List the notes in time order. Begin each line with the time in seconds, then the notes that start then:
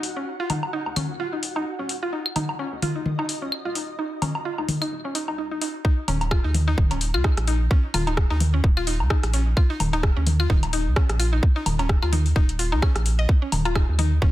Already playing: D#1 F#4 F#5
0.03 open hi-hat
0.17 C#4
0.40 F4
0.50 D#1 D#4, open hi-hat, mid tom, low woodblock
0.63 low woodblock
0.73 D#4
0.86 D#2, low woodblock
0.96 C#4, open hi-hat, mid tom, claves
1.20 D#1 F4
1.33 D#4
1.43 open hi-hat
1.56 C#2 D#4, low woodblock
1.79 D#1 C#4
1.89 open hi-hat
2.03 F4
2.13 D#4 D#5
2.26 claves
2.36 D#1 D#4, open hi-hat, mid tom, low woodblock
2.49 low woodblock
2.59 C#4
2.72 D#2
2.82 F4, open hi-hat, mid tom
2.96 D#4
3.06 D#1, mid tom
3.19 D#4, low woodblock
3.29 open hi-hat
3.42 C#2 C#4
3.52 claves
3.65 D#1 F4
3.75 D#4, open hi-hat
3.99 D#4
4.22 D#1 C#4, open hi-hat, mid tom, low woodblock
4.35 low woodblock
4.45 F4
4.58 D#2 D#4, low woodblock
4.68 open hi-hat, mid tom
4.82 D#4, open hi-hat, claves
4.92 D#1
5.05 C#4
5.15 D#4, open hi-hat
5.28 C#2 D#4, low woodblock
5.38 D#4
5.51 A#1 D#4
5.61 D#4, open hi-hat
5.85 D#4, kick
6.08 D#1 C#4, open hi-hat, mid tom, low woodblock
6.21 closed hi-hat, low woodblock
6.31 F4, kick, cross-stick, claves
6.44 D#2 D#4
6.54 open hi-hat, mid tom
6.68 D#4
6.78 D#1, kick, mid tom
6.91 C#4, closed hi-hat, low woodblock
7.01 open hi-hat
7.14 C#2 F4, claves
7.24 D#4, kick, cross-stick
7.37 A#1, cross-stick, closed hi-hat
7.47 D#4, open hi-hat
7.71 C#4, kick
7.94 D#1 F4, open hi-hat, mid tom, claves, low woodblock
8.07 D#4, closed hi-hat, low woodblock
8.17 kick, cross-stick
8.30 D#2 D#4, low woodblock
8.40 open hi-hat, mid tom
8.54 C#4
8.64 D#1, kick
8.77 F4, claves
8.87 D#4, open hi-hat
9.00 C#2, low woodblock
9.10 D#4, kick, cross-stick
9.23 A#1, cross-stick, closed hi-hat
9.34 C#4, open hi-hat
9.57 F4, kick, claves
9.70 D#4
9.80 D#1, open hi-hat, mid tom, low woodblock
9.93 D#4, closed hi-hat, low woodblock
10.03 kick, cross-stick
10.16 D#2 C#4
10.27 open hi-hat, mid tom
10.40 F4, claves
10.50 D#1 D#4, kick, mid tom
10.63 closed hi-hat, low woodblock
10.73 D#4, open hi-hat
10.86 C#2
10.96 C#4, kick, cross-stick
11.09 A#1, cross-stick, closed hi-hat
11.20 F4, open hi-hat, claves
11.33 D#4
11.43 kick
11.56 D#4
11.66 D#1, open hi-hat, mid tom, low woodblock
11.79 C#4, closed hi-hat, low woodblock
11.89 kick, cross-stick
12.02 D#2 F4, claves, low woodblock
12.13 D#4, open hi-hat, mid tom
12.26 open hi-hat
12.36 D#1 D#4, kick
12.49 closed hi-hat
12.59 F4, open hi-hat
12.72 C#2 D#4, low woodblock
12.82 C#4, kick, cross-stick, claves
12.96 A#1, cross-stick, closed hi-hat
13.06 open hi-hat
13.19 D#5
13.29 kick
13.42 C#4
13.52 D#1, open hi-hat, mid tom, low woodblock
13.65 F4, closed hi-hat, low woodblock
13.75 D#4, kick, cross-stick, claves
13.89 D#2
13.99 D#4, open hi-hat, mid tom
14.22 D#1 C#4, kick, mid tom